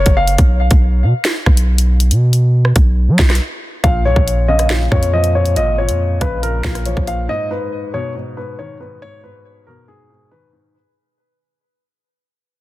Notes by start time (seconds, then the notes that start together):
Already playing: C#5
0.06 F#1, kick, closed hi-hat
0.17 F5
0.27 closed hi-hat
0.38 B1, kick, closed hi-hat
0.71 B1, kick, closed hi-hat
1.03 B2
1.25 snare, closed hi-hat
1.46 B1, kick, cross-stick
1.57 closed hi-hat
1.78 closed hi-hat
2.00 closed hi-hat
2.11 B2, closed hi-hat
2.33 closed hi-hat
2.65 cross-stick
2.76 B1, kick, closed hi-hat
3.08 F#3
3.19 B1, kick, snare
3.30 cross-stick, snare, closed hi-hat
3.35 closed hi-hat
3.83 A#1 A#2 F5, kick, closed hi-hat
4.05 B1 A#2 C#5
4.16 A#1, kick
4.28 closed hi-hat
4.48 C#3 D#5
4.59 cross-stick, closed hi-hat
4.70 A#2, snare
4.92 F2 A#2 C#5, kick, cross-stick
5.03 closed hi-hat
5.13 F3 D#5
5.24 closed hi-hat
5.35 A#2 C#5
5.46 closed hi-hat
5.56 G#1 A#2 D#5, closed hi-hat
5.78 A#2 C#5
5.89 F2, closed hi-hat
6.21 A#1 C#3 B4, kick, closed hi-hat
6.43 A#2 A#4, closed hi-hat
6.64 A#1 A#2, kick, snare
6.75 cross-stick, closed hi-hat
6.86 F3 C#5, closed hi-hat
6.97 A#1, kick
7.07 A#2 F5, closed hi-hat
7.29 G#2 D#5
7.50 G#2 B4
7.94 B2 C#5
8.15 G#2
8.37 G#2 B4
8.59 D#3 C#5
8.80 G#2 B4
9.02 G#2 C#5
9.23 G#2 B4
9.67 B2 A#4
9.88 G#2 G#4
10.10 G#2
10.31 D#3 B4
10.53 G#2